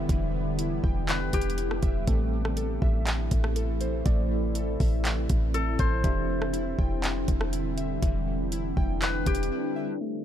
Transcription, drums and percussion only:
0.09 kick, closed hi-hat
0.59 closed hi-hat
0.84 kick
1.09 clap, closed hi-hat
1.33 kick, closed hi-hat
1.41 closed hi-hat
1.50 closed hi-hat
1.58 closed hi-hat
1.71 cross-stick
1.83 kick, closed hi-hat
2.07 kick, closed hi-hat
2.45 cross-stick
2.57 closed hi-hat
2.82 kick
3.07 clap, closed hi-hat
3.31 kick, closed hi-hat
3.44 cross-stick
3.56 closed hi-hat
3.81 closed hi-hat
4.06 kick, closed hi-hat
4.55 closed hi-hat
4.80 kick, open hi-hat
5.05 clap, closed hi-hat
5.29 kick, closed hi-hat
5.54 closed hi-hat
5.79 kick, closed hi-hat
6.04 kick, closed hi-hat
6.42 cross-stick
6.54 closed hi-hat
6.79 kick
7.04 clap, closed hi-hat
7.28 kick, closed hi-hat
7.41 cross-stick
7.53 closed hi-hat
7.78 closed hi-hat
8.03 kick, closed hi-hat
8.52 closed hi-hat
8.77 kick
9.02 clap, closed hi-hat
9.26 kick, closed hi-hat
9.35 closed hi-hat
9.43 closed hi-hat

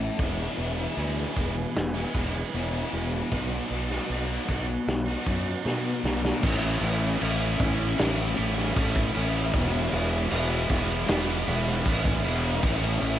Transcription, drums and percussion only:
0.19 kick, open hi-hat
0.97 open hi-hat
1.36 kick
1.76 snare, open hi-hat
2.15 kick
2.53 open hi-hat
3.31 kick, open hi-hat
3.91 snare
4.09 open hi-hat
4.49 kick
4.88 snare, open hi-hat
5.27 kick
5.66 snare
6.05 snare
6.25 snare
6.43 kick, crash
6.82 crash
7.21 crash
7.60 kick, crash
7.99 snare, crash
8.38 crash
8.58 snare
8.76 kick, crash
8.96 kick
9.15 crash
9.53 kick, crash
9.92 crash
10.30 crash
10.69 kick, crash
11.08 snare, crash
11.47 crash
11.67 snare
11.85 kick, crash
12.05 kick
12.24 crash
12.63 kick, crash
13.02 crash

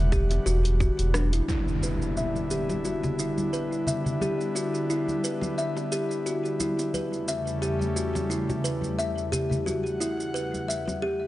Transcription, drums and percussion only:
0.12 kick, shaker
0.31 closed hi-hat, high bongo, shaker
0.47 shaker
0.65 closed hi-hat, shaker
0.80 kick, shaker
0.99 closed hi-hat, shaker
1.14 cross-stick, high conga, shaker
1.33 closed hi-hat, high bongo, shaker
1.48 high conga, shaker
1.68 shaker
1.82 high bongo, shaker
2.02 shaker
2.17 shaker
2.36 high conga, shaker
2.51 shaker
2.69 high bongo, high conga, shaker
2.85 shaker
3.03 high bongo, low conga, shaker
3.19 shaker
3.38 high conga, shaker
3.53 shaker
3.72 shaker
3.87 low conga, shaker
4.06 low conga, shaker
4.21 high conga, shaker
4.41 shaker
4.55 high bongo, shaker
4.75 shaker
4.90 shaker
5.08 high conga, shaker
5.24 shaker
5.41 high bongo, high conga, shaker
5.58 shaker
5.77 high bongo, shaker
5.92 shaker
6.11 shaker
6.26 shaker
6.45 shaker
6.60 high conga, shaker
6.79 high bongo, shaker
6.94 high conga, shaker
7.13 shaker
7.28 high bongo, shaker
7.47 shaker
7.63 shaker
7.81 high conga, shaker
7.97 shaker
8.15 high bongo, high conga, shaker
8.31 shaker
8.49 high bongo, low conga, shaker
8.65 shaker
8.82 high conga, shaker
8.99 shaker
9.18 shaker
9.33 low conga, shaker
9.51 low conga, shaker
9.67 high conga, shaker
9.86 shaker
10.01 high bongo, shaker
10.20 shaker
10.36 shaker
10.54 high conga, shaker
10.70 shaker
10.88 high bongo, high conga, shaker

